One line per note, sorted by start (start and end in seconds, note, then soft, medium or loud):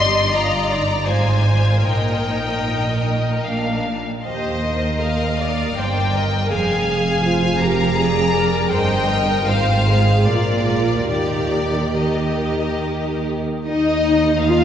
0.00 1.06 G1 soft
0.00 1.06 G2 soft
0.00 0.33 G4 soft
0.00 0.33 D5 soft
0.00 0.32 D#5 soft
0.00 0.32 C6 medium
0.33 0.70 F4 soft
0.33 1.09 D5 soft
0.33 0.71 D#5 soft
0.33 1.09 A#5 medium
0.69 1.09 D#4 soft
0.69 1.08 D5 soft
1.07 1.88 G#1 soft
1.07 1.88 G#2 soft
1.07 1.48 F4 soft
1.07 1.88 C5 soft
1.07 1.89 C5 soft
1.07 1.87 G#5 medium
1.50 1.88 F4 soft
1.88 3.45 A#1 soft
1.88 3.45 A#2 soft
1.88 3.49 D#4 soft
1.88 3.84 A#4 soft
1.88 3.46 D#5 soft
1.88 3.48 G5 medium
3.47 4.05 A#1 soft
3.47 4.06 A#2 soft
3.47 4.06 D4 soft
3.47 4.07 F5 soft
4.25 5.75 D#2 soft
4.25 4.64 G4 soft
4.25 4.99 C5 soft
4.25 4.99 D#5 soft
4.25 5.76 D#5 soft
4.67 5.78 A#4 soft
5.02 5.41 A#4 soft
5.02 5.77 F5 soft
5.41 5.79 D5 soft
5.77 6.53 G1 soft
5.77 6.53 G2 soft
5.77 6.52 A#4 soft
5.77 6.17 C5 soft
5.77 6.17 D5 soft
5.77 6.52 G5 soft
6.16 6.53 A#4 soft
6.16 6.53 D#5 soft
6.52 8.73 F1 soft
6.52 8.73 F2 soft
6.52 7.26 G#4 soft
6.52 7.97 F5 soft
6.52 7.61 G#5 medium
7.26 7.63 F4 soft
7.26 7.63 C5 soft
7.62 7.99 G4 soft
7.62 7.99 A#4 soft
7.62 8.72 A#5 medium
7.97 8.34 G#4 soft
7.97 8.73 G#4 soft
7.97 8.73 D5 soft
8.34 8.72 A#4 soft
8.72 9.45 G1 soft
8.72 9.45 G2 soft
8.72 9.45 A#4 soft
8.72 9.09 C5 medium
8.72 9.45 D#5 soft
8.72 9.47 G5 medium
9.09 9.48 A#4 soft
9.48 10.30 G#1 soft
9.48 10.30 G#2 soft
9.48 10.29 F4 soft
9.48 9.89 C5 medium
9.48 10.30 C5 soft
9.48 10.30 F5 medium
9.89 10.30 G#4 soft
10.28 11.12 A#1 soft
10.28 11.12 A#2 soft
10.28 11.12 F4 soft
10.28 11.11 F4 soft
10.28 11.11 A#4 soft
10.28 11.11 D5 medium
11.12 13.42 D#2 soft
11.12 13.42 D#3 soft
11.12 13.22 G4 soft
11.12 11.97 G4 soft
11.12 11.96 A#4 soft
11.12 11.96 D5 medium
11.97 13.43 G4 soft
11.97 13.44 A#4 soft
11.97 13.26 D#5 soft
13.67 14.64 D#2 soft
13.67 14.43 D#4 medium
13.67 14.43 D#5 medium
13.67 14.43 D#5 soft
14.46 14.64 F4 medium
14.46 14.64 F5 medium